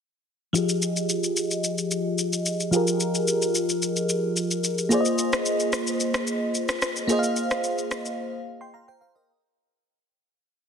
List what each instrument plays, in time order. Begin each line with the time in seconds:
0.53 fm electric piano F3 F4 G4 G#4, shaker
0.58 fm electric piano D#5
0.69 shaker
0.82 shaker
0.96 shaker
1.09 shaker
1.24 shaker
1.37 shaker
1.51 shaker
1.64 shaker
1.78 shaker
1.91 shaker
2.18 shaker
2.33 shaker
2.46 shaker
2.60 shaker
2.71 fm electric piano F3 F4 G4 G#4, shaker
2.76 fm electric piano A#4
2.87 shaker
3.00 shaker
3.15 shaker
3.28 shaker
3.42 shaker
3.55 shaker
3.69 shaker
3.82 shaker
3.96 shaker
4.09 shaker
4.37 shaker
4.51 shaker
4.64 shaker
4.78 shaker
4.89 fm electric piano A#3 F4 G#4 C5, shaker
4.94 fm electric piano D5
5.01 fm electric piano D#5
5.05 shaker
5.18 shaker
5.33 cross-stick, shaker
5.46 shaker
5.60 shaker
5.73 cross-stick, shaker
5.87 shaker
6.00 shaker
6.14 cross-stick, shaker
6.27 shaker
6.55 shaker
6.69 cross-stick, shaker
6.82 cross-stick, shaker
6.96 shaker
7.07 fm electric piano A#3 F4 G#4 C5, shaker
7.12 fm electric piano D#5
7.19 fm electric piano F5
7.23 shaker
7.36 shaker
7.51 cross-stick, shaker
7.64 shaker
7.78 shaker
7.91 cross-stick, shaker
8.06 shaker
8.61 fm electric piano G5 C6
8.74 fm electric piano F5 A#5
8.88 fm electric piano C5 G5
9.01 fm electric piano C5 F5
9.15 fm electric piano A#4 D#5